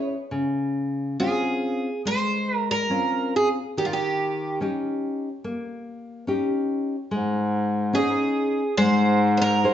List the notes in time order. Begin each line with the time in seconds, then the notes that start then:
Already playing: C#4 E4 G#4
0.31 C#3
1.20 C4 C#4 F4 G#4
2.05 G#3 C5
2.57 A#4
2.71 A#4
2.90 C4 C#4 F4
3.36 G#4
3.77 D#3 G4
3.85 F4
3.93 G4
4.61 C#4 D#4 G4
5.44 A#3
6.27 C#4 D#4 G4
7.11 G#2 G#3
7.93 C#4 D#4 G#4
8.77 G#2 G#3 C5
9.37 C5
9.42 A#4
9.64 D#4 G#4 C5